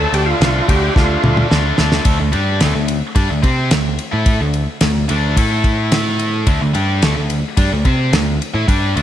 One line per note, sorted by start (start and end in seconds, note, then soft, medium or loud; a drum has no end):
0.00 0.40 D3 medium
0.00 0.41 A3 loud
0.00 0.41 D4 loud
0.00 0.14 A4 loud
0.13 0.32 D2 loud
0.13 0.28 G4 medium
0.13 ride medium
0.26 0.69 F4 medium
0.41 0.60 C2 medium
0.41 0.68 D3 medium
0.41 0.68 A3 medium
0.41 0.69 D4 loud
0.41 snare loud
0.41 ride medium
0.68 0.88 D2 medium
0.68 0.94 D3 medium
0.68 0.95 A3 medium
0.68 0.95 D4 medium
0.68 0.94 G4 medium
0.68 kick loud
0.68 ride medium
0.95 1.16 D2 medium
0.95 1.49 D3 medium
0.95 1.50 A3 loud
0.95 1.50 D4 loud
0.95 1.47 F4 medium
0.95 kick loud
0.95 snare medium
1.24 1.43 D2 medium
1.24 mid tom medium
1.37 mid tom medium
1.50 1.71 D2 medium
1.50 1.77 D3 medium
1.50 1.77 A3 medium
1.50 1.78 D4 loud
1.50 snare loud
1.78 1.99 D2 medium
1.78 2.04 D3 medium
1.78 2.04 A3 medium
1.78 2.05 D4 loud
1.78 snare medium
1.92 snare medium
2.05 2.18 D2 medium
2.05 2.18 D3 medium
2.05 2.18 A3 medium
2.05 kick loud
2.05 ride loud
2.19 2.33 D2 medium
2.19 2.33 D3 medium
2.19 2.31 A3 medium
2.32 2.59 G2 medium
2.32 2.59 G3 medium
2.32 2.60 D4 medium
2.32 2.60 G4 medium
2.32 ride medium
2.60 2.75 D2 loud
2.60 2.74 D3 medium
2.60 2.74 A3 loud
2.60 snare medium
2.60 ride loud
2.75 3.01 D2 medium
2.75 2.97 D3 medium
2.75 2.97 A3 medium
2.88 ride medium
3.15 3.29 G2 medium
3.15 3.29 G3 loud
3.15 3.29 D4 loud
3.15 kick medium
3.15 ride medium
3.30 3.43 D2 medium
3.30 3.44 D3 medium
3.30 3.42 A3 medium
3.42 3.69 C3 loud
3.42 3.70 C4 medium
3.42 3.70 G4 medium
3.42 3.70 C5 medium
3.42 kick medium
3.42 ride medium
3.70 3.97 D2 medium
3.70 3.93 D3 medium
3.70 3.93 A3 medium
3.70 snare loud
3.70 ride medium
3.99 ride medium
4.12 4.39 A2 medium
4.12 4.39 A3 medium
4.12 4.39 E4 medium
4.12 4.40 A4 medium
4.26 kick loud
4.26 ride medium
4.40 4.66 D2 medium
4.40 4.62 D3 medium
4.40 4.63 A3 medium
4.54 ride medium
4.81 5.07 D2 medium
4.81 5.04 D3 medium
4.81 5.04 A3 medium
4.81 snare loud
4.81 ride medium
5.09 5.36 D2 medium
5.09 5.36 D3 medium
5.09 5.36 A3 medium
5.09 5.37 D4 loud
5.09 ride medium
5.37 6.44 A2 medium
5.37 6.46 A3 loud
5.37 6.47 E4 loud
5.37 6.47 A4 loud
5.37 kick loud
5.37 ride loud
5.64 kick medium
5.64 ride medium
5.92 snare loud
5.92 ride loud
6.19 ride medium
6.47 6.60 D2 medium
6.47 6.60 D3 medium
6.47 6.60 A3 loud
6.47 kick loud
6.47 ride loud
6.61 6.74 D2 medium
6.61 6.75 D3 medium
6.61 6.73 A3 medium
6.74 7.01 G2 medium
6.74 7.01 G3 medium
6.74 7.02 D4 medium
6.74 7.02 G4 medium
6.74 ride medium
7.02 7.16 D2 loud
7.02 7.15 D3 medium
7.02 7.15 A3 loud
7.02 snare loud
7.02 ride loud
7.16 7.43 D2 medium
7.16 7.38 D3 medium
7.16 7.39 A3 medium
7.30 ride medium
7.57 7.71 G2 medium
7.57 7.71 G3 loud
7.57 7.71 D4 loud
7.57 kick loud
7.57 ride loud
7.71 7.85 D2 medium
7.71 7.85 D3 medium
7.71 7.85 A3 medium
7.85 8.11 C3 medium
7.85 8.12 C4 medium
7.85 8.13 G4 medium
7.85 8.13 C5 loud
7.85 kick medium
7.85 ride medium
8.13 8.39 D2 medium
8.13 8.35 D3 medium
8.13 8.36 A3 medium
8.13 snare loud
8.13 ride medium
8.42 ride medium
8.54 8.67 A2 medium
8.54 8.67 A3 medium
8.54 8.68 E4 medium
8.68 8.94 G2 medium
8.68 8.95 G3 medium
8.68 8.96 D4 loud
8.68 8.96 G4 medium
8.68 kick loud
8.68 ride medium
8.95 9.02 D2 medium
8.95 9.02 D3 medium
8.95 9.02 A3 medium
8.95 9.02 D4 medium
8.95 ride medium